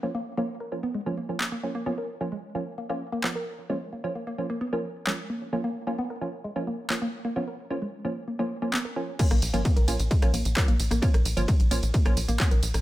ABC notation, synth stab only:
X:1
M:4/4
L:1/16
Q:1/4=131
K:Bbphr
V:1 name="Synth stab"
[F,B,D] z2 [F,B,D] z2 [F,B,D] z2 [F,B,D] z [F,B,D] z2 [F,B,D]2 | [F,B,D] z2 [F,B,D] z2 [F,B,D] z2 [F,B,D] z2 [F,B,D] z3 | [F,B,D] z2 [F,B,D] z2 [F,B,D] z2 [F,B,D] z2 [F,B,D] z3 | [F,B,D] z2 [F,B,D] z2 [F,B,D] z2 [F,B,D] z2 [F,B,D] z3 |
[F,B,D] z2 [F,B,D] z2 [F,B,D] z2 [F,B,D] z [F,B,D] z2 [F,B,D]2 | [F,B,D] z2 [F,B,D] z2 [F,B,D] z2 [F,B,D] z2 [F,B,D] z3 | [F,B,D] z2 [F,B,D] z2 [F,B,D] z2 [F,B,D] z2 [F,B,D] z3 |]